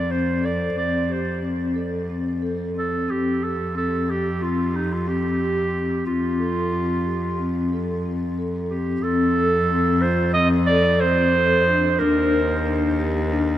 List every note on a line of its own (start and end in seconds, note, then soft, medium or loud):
0.00 3.09 F2 medium
0.00 0.12 D5 medium
0.11 0.39 C4 medium
0.11 0.47 C5 medium
0.44 0.72 A4 medium
0.44 0.77 D5 medium
0.77 1.05 C4 medium
0.77 1.14 D5 medium
1.09 1.38 G4 medium
1.09 1.44 C5 medium
1.43 1.72 C4 medium
1.76 2.04 A4 medium
2.09 2.38 C4 medium
2.42 2.71 A4 medium
2.75 3.04 C4 medium
2.75 3.12 A4 medium
3.08 6.07 F2 medium
3.08 3.37 C4 medium
3.08 3.45 G4 medium
3.42 3.70 G4 medium
3.42 3.76 A4 medium
3.75 4.03 C4 medium
3.75 4.12 A4 medium
4.08 4.36 G4 medium
4.08 4.44 G4 medium
4.41 4.70 C4 medium
4.41 4.78 F4 medium
4.74 4.94 D#4 medium
4.74 5.03 G4 medium
4.93 5.09 F4 medium
5.07 5.36 C4 medium
5.07 6.06 G4 medium
5.40 5.69 G4 medium
5.73 6.02 C4 medium
6.06 9.00 F2 medium
6.06 6.35 C4 medium
6.06 8.34 F4 medium
6.40 6.68 A4 medium
6.73 7.01 C4 medium
7.06 7.34 G4 medium
7.39 7.67 C4 medium
7.73 8.01 A4 medium
8.05 8.33 C4 medium
8.38 8.67 A4 medium
8.70 9.00 C4 medium
8.70 9.05 G4 medium
9.03 12.02 F2 medium
9.03 9.32 C4 medium
9.03 10.03 A4 loud
9.38 9.66 A4 medium
9.70 9.98 C4 medium
10.01 10.31 F4 medium
10.01 10.33 C5 medium
10.34 10.64 C4 medium
10.34 10.49 D#5 loud
10.67 10.97 A4 medium
10.67 11.02 D5 loud
11.01 11.30 C4 medium
11.01 12.01 C5 loud
11.36 11.64 A4 medium
11.68 11.96 D4 medium
11.99 13.58 D#2 medium
11.99 12.29 D4 medium
11.99 12.98 A#4 loud
12.33 12.62 A#4 medium
12.66 12.94 D4 medium
12.99 13.28 G4 medium
13.32 13.58 D4 medium